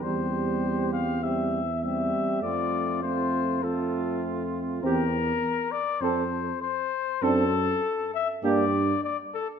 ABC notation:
X:1
M:4/4
L:1/8
Q:1/4=100
K:F
V:1 name="Trumpet"
c3 f e2 e2 | d2 c2 A2 z2 | B3 d c2 c2 | A3 e d2 d A |]
V:2 name="Flugelhorn"
G4 G z G2 | F2 F2 F4 | G z3 A z3 | A z3 G z3 |]
V:3 name="French horn"
C4 C z C2 | C2 C2 C4 | C z3 C z3 | D z3 D z3 |]
V:4 name="Euphonium"
G,4 G, z G,2 | A,2 A,2 A,4 | C z3 C z3 | C z3 B, z3 |]
V:5 name="Tuba" clef=bass
E,,6- E,, z | F,,8 | E,,2 z2 F,,2 z2 | ^F,,2 z2 G,,2 z2 |]